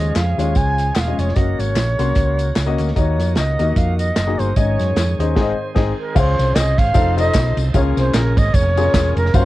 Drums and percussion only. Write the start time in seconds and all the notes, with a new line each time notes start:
0.16 snare, clap, closed hi-hat, tambourine
0.39 closed hi-hat, tambourine
0.55 kick, closed hi-hat, tambourine
0.78 closed hi-hat, tambourine
0.95 snare, clap, closed hi-hat, tambourine
1.19 closed hi-hat, tambourine
1.28 snare
1.36 kick, closed hi-hat, tambourine
1.59 closed hi-hat, tambourine
1.76 snare, clap, closed hi-hat, tambourine
1.99 closed hi-hat, tambourine
2.15 kick, closed hi-hat, tambourine
2.39 closed hi-hat, tambourine
2.56 snare, clap, closed hi-hat, tambourine
2.78 closed hi-hat, tambourine
2.88 snare
2.96 kick, closed hi-hat, tambourine
3.19 snare, closed hi-hat, tambourine
3.36 snare, clap, closed hi-hat, tambourine
3.59 closed hi-hat, tambourine
3.76 kick, closed hi-hat, tambourine
3.99 closed hi-hat, tambourine
4.16 snare, clap, closed hi-hat, tambourine
4.39 closed hi-hat, tambourine
4.56 kick, closed hi-hat, tambourine
4.79 snare, closed hi-hat, tambourine
4.96 snare, clap, closed hi-hat, tambourine
5.20 closed hi-hat, tambourine
5.36 kick, snare, crash
5.76 kick, snare, crash
6.16 kick, crash, tambourine
6.39 snare, ride, tambourine
6.55 snare, clap, ride, tambourine
6.78 kick, ride, tambourine
6.94 kick, ride, tambourine
7.18 ride, tambourine
7.34 kick, snare, clap, ride, tambourine
7.57 ride, tambourine
7.74 kick, ride, tambourine
7.97 snare, ride, tambourine
8.14 snare, clap, ride, tambourine
8.37 kick, ride, tambourine
8.54 kick, ride, tambourine
8.77 ride, tambourine
8.94 kick, snare, clap, ride, tambourine
9.17 ride, tambourine
9.26 snare
9.34 kick, ride, tambourine